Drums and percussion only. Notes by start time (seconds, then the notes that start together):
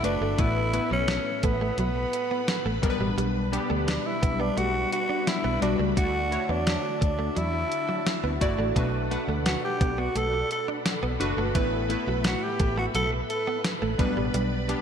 0.04 closed hi-hat
0.38 kick, closed hi-hat
0.74 closed hi-hat
1.08 snare, closed hi-hat
1.43 kick, closed hi-hat
1.78 closed hi-hat
2.13 closed hi-hat
2.48 snare, closed hi-hat
2.83 kick, closed hi-hat
3.18 closed hi-hat
3.53 closed hi-hat
3.88 snare, closed hi-hat
4.23 kick, closed hi-hat
4.58 closed hi-hat
4.92 closed hi-hat
5.27 snare, closed hi-hat
5.62 closed hi-hat
5.97 kick, closed hi-hat
6.32 closed hi-hat
6.67 snare, closed hi-hat
7.02 kick, closed hi-hat
7.37 closed hi-hat
7.72 closed hi-hat
8.07 snare, closed hi-hat
8.41 kick, closed hi-hat
8.76 kick, closed hi-hat
9.11 closed hi-hat
9.46 snare, closed hi-hat
9.81 kick, closed hi-hat
10.16 closed hi-hat
10.51 closed hi-hat
10.86 snare, closed hi-hat
11.21 closed hi-hat
11.55 kick, closed hi-hat
11.90 closed hi-hat
12.24 snare, closed hi-hat
12.60 kick, closed hi-hat
12.95 closed hi-hat
13.30 closed hi-hat
13.64 snare, closed hi-hat
13.99 kick, closed hi-hat
14.34 closed hi-hat
14.69 closed hi-hat